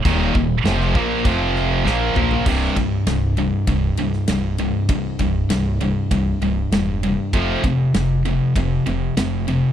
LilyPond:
<<
  \new Staff \with { instrumentName = "Distorted electric guitar" } { \clef bass \time 4/4 \key c \minor \tempo 4 = 98 <ees, bes, ees>8 <ees, bes,>8 <f, c f>8 <bes, f bes>8 <f, c f>4 <bes, f bes>8 <bes, f bes>8 | <c, g, c>8 <c, g,>8 <c, g,>8 <c, g,>8 <c, g,>8 <c, g,>8 <c, g,>8 <c, g,>8 | <c, g,>8 <c, g,>8 <c, g,>8 <c, g,>8 <c, g,>8 <c, g,>8 <c, g,>8 <c, g,>8 | <f, c f>8 <f, c>8 <f, c>8 <f, c>8 <f, c>8 <f, c>8 <f, c>8 <f, c>8 | }
  \new Staff \with { instrumentName = "Distorted electric guitar" } { \clef bass \time 4/4 \key c \minor <ees, bes, ees>8 <ees, bes,>8 <f, c f>8 <bes, f bes>8 <f, c f>4 <bes, f bes>8 <bes, f bes>8 | <c, g, c>8 <c, g,>8 <c, g,>8 <c, g,>8 <c, g,>8 <c, g,>8 <c, g,>8 <c, g,>8 | <c, g,>8 <c, g,>8 <c, g,>8 <c, g,>8 <c, g,>8 <c, g,>8 <c, g,>8 <c, g,>8 | <f, c f>8 <f, c>8 <f, c>8 <f, c>8 <f, c>8 <f, c>8 <f, c>8 <f, c>8 | }
  \new Staff \with { instrumentName = "Upright bass" } { \clef bass \time 4/4 \key c \minor ees,,8 ees,,8 f,,8 bes,,8 f,,4 bes,,8 bes,,8 | c,,8 c,,8 c,,4 c,,8 c,,8 c,,4 | c,,8 c,,8 c,,4 c,,8 c,,8 e,,4 | f,,8 f,,8 f,,4 f,,8 f,,8 f,,4 | }
  \new DrumStaff \with { instrumentName = "Drums" } \drummode { \time 4/4 <cymc bd>8 bd8 <cymc sn>16 sn16 bd8 <cymc bd>8 sn8 sn8 toml16 tomfh16 | <cymc bd>8 <bd cymr>8 <cymr sn>8 cymr8 <bd cymr>8 cymr16 sn16 <cymr sn>8 cymr8 | <bd cymr>8 <bd cymr>8 <cymr sn>8 cymr8 <bd cymr>8 cymr8 <cymr sn>8 cymr8 | <bd cymr>8 <bd cymr>8 <cymr sn>8 cymr8 <bd cymr>8 cymr8 <cymr sn>8 cymr8 | }
>>